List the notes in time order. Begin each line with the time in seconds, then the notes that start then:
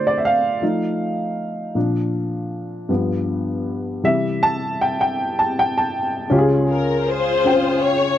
Already playing: D3 A3 F4 C5 D5
0.07 D5
0.18 E5
0.25 F5
0.62 F3 A3 D#4
1.75 A#2 F3 D4
2.89 G2 F3 B3
4.03 C3 E3 G3 E5
4.43 A5
4.81 G5
5.01 G5
5.39 A5
5.59 G5
5.78 A5
6.30 C#2 C#3 C#4 F4 G4
6.38 G#4
6.70 A#4
7.07 F4 G#4 C5
7.44 C#4 F4 G5
7.83 C#5